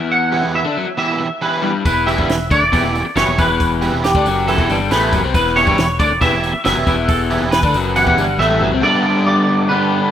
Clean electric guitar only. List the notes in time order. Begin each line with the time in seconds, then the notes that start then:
Already playing: E5
0.12 F#5
0.55 E5
0.99 E5
1.42 B4
1.86 B4
2.07 E5
2.51 D5
3.17 C#5
3.39 B4
4.04 G4
4.48 A4
4.91 B4
5.35 B4
5.56 C#5
6.00 D5
6.21 E5
6.65 E5
7.08 A4
7.51 B4
7.96 F#5
8.39 E5
8.83 D5
9.27 D5
9.69 B4